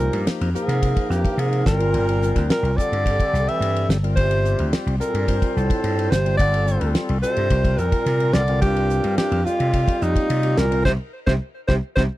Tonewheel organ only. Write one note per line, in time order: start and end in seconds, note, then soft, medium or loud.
0.00 0.50 F3 medium
0.00 0.50 A#3 medium
0.00 0.50 D#4 medium
0.00 0.50 G4 medium
0.55 0.81 F3 medium
0.55 0.81 A#3 medium
0.55 0.81 D#4 medium
0.55 0.81 A#4 medium
0.82 1.66 F3 medium
0.82 1.66 A#3 medium
0.82 1.66 D#4 medium
0.82 1.66 A#4 medium
1.66 2.71 G3 medium
1.66 2.71 C4 medium
1.66 2.71 F4 medium
1.66 2.72 A#4 medium
2.77 3.04 G3 medium
2.77 3.04 C4 medium
2.77 3.04 F4 medium
2.77 3.04 A4 medium
3.06 3.98 G3 medium
3.06 3.97 C4 medium
3.06 3.98 G4 medium
3.06 3.98 A4 medium
4.03 4.16 G3 medium
4.03 4.16 C4 medium
4.03 4.16 F4 medium
4.03 4.17 A#4 medium
4.17 4.96 G3 medium
4.17 4.96 C4 medium
4.17 4.96 F4 medium
4.17 4.96 G4 medium
5.00 5.26 G3 medium
5.00 5.26 C4 medium
5.00 5.26 F4 medium
5.00 5.26 A4 medium
5.28 6.20 G3 medium
5.28 6.20 C4 medium
5.28 6.20 F4 medium
5.28 6.20 C5 medium
6.25 6.38 G3 medium
6.25 6.38 C4 medium
6.25 6.38 F4 medium
6.25 6.39 C5 medium
6.39 7.18 G3 medium
6.39 7.18 C4 medium
6.39 7.18 F4 medium
6.39 7.18 A4 medium
7.23 7.49 G3 medium
7.23 7.49 C4 medium
7.23 7.49 F4 medium
7.23 7.50 A4 medium
7.50 8.42 G3 medium
7.50 8.43 C4 medium
7.50 8.43 F4 medium
7.50 8.43 A#4 medium
8.49 8.60 G3 medium
8.49 8.61 C4 medium
8.49 8.61 F4 medium
8.49 8.61 A#4 medium
8.62 9.41 G3 medium
8.62 9.41 C4 medium
8.62 9.41 F4 medium
8.62 9.41 A#4 medium
9.46 9.72 G3 medium
9.46 9.72 C4 medium
9.46 9.72 F4 medium
9.46 9.72 G4 medium
9.74 10.66 G3 medium
9.74 10.66 C4 medium
9.74 10.66 F4 medium
9.74 10.66 G4 medium
10.71 10.84 G3 medium
10.71 10.84 C4 medium
10.71 10.84 F4 medium
10.71 10.84 A#4 medium
10.85 10.94 C4 medium
10.85 10.94 D#4 medium
10.85 10.94 G4 medium
11.27 11.36 C4 medium
11.27 11.36 D#4 medium
11.27 11.36 G4 medium
11.69 11.78 C4 medium
11.69 11.78 D#4 medium
11.69 11.78 G4 medium
11.97 12.06 C4 medium
11.97 12.06 D#4 medium
11.97 12.06 G4 medium